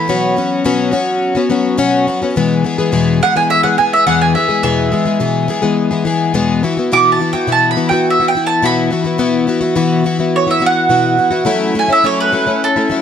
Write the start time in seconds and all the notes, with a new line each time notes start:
Already playing: B5
0.08 B2 F#3 B3 C#4 F#4
0.36 F#3 B3 C#4 F#4
0.64 B2 F#3 B3 C#4 F#4
0.91 F#3 B3 C#4 F#4
1.35 B3 C#4 F#4
1.50 F#3 B3 C#4 F#4
1.78 B2 F#3 B3 C#4 F#4
2.07 F#3 B3 C#4 F#4
2.22 B3 C#4 F#4
2.36 E2 B2 E3 G#3 B3 G#4
2.64 E3 G#3 B3 G#4
2.78 E3 G#3 B3 G#4
2.92 E2 B2 E3 G#3 B3 G#4
3.21 E3 G#3 B3 G#4 F#5
3.35 E3 G#3 B3 G#4 G#5
3.50 E5
3.63 E3 G#3 B3 G#4 F#5
3.78 E3 G#3 B3 G#4 G#5
3.93 E5
4.07 E2 B2 E3 G#3 B3 G#4 F#5
4.21 G#5
4.35 E3 G#3 B3 G#4 E5
4.49 E3 G#3 B3 G#4
4.63 E2 B2 E3 G#3 B3 G#4 E5
4.92 E3 G#3 B3 G#4
5.05 E3 G#3 B3 G#4
5.20 E2 B2 E3 G#3 B3 G#4
5.48 E3 G#3 B3 G#4
5.62 E3 G#3 B3 G#4
5.91 E3 G#3 B3 G#4
6.05 E3 G#3 B3 G#4
6.34 E2 B2 E3 G#3 B3 G#4
6.63 E3 B3 E4 F#4
6.77 B3 E4 F#4
6.92 B2 E3 B3 E4 F#4 D6
7.12 A5
7.19 E3 B3 E4 F#4
7.33 B3 E4 F#4 G5
7.47 B2 E3 B3 E4 F#4
7.52 A5
7.71 B5
7.75 E3 B3 E4 F#4
7.89 E4 F#4 G5
7.93 B3
8.10 E5
8.20 B3 E4 F#4
8.28 G5
8.35 E3 B3 E4 F#4
8.47 A5
8.62 B2 E3 B3 E4 F#4 B5
8.90 E3 B3 E4 F#4
9.04 B3 E4 F#4
9.18 B2 E3 B3 E4 F#4
9.47 E3 B3 E4 F#4
9.61 B3 E4 F#4
9.75 B2 E3 B3 E4 F#4
10.04 E3 B3 E4 F#4
10.19 B3 E4 F#4
10.36 C#5
10.47 B3 E4 F#4 E5
10.60 E3 B3 E4 F#4
10.66 F#5
10.89 B2 E3 B3 E4 F#4
11.17 E3 B3 E4 F#4
11.31 B3 E4 F#4
11.45 F#3 A3 C#4 E4
11.74 F#3 A3 C#4 E4
11.79 G#5
11.89 A3 C#4 E4 E5
12.04 F#3 A3 C#4 E4 C#5
12.20 B4
12.32 F#3 A3 C#4 E4
12.47 A3 C#4 E4
12.64 A4
12.76 A3 C#4 E4
12.90 F#3 A3 C#4 E4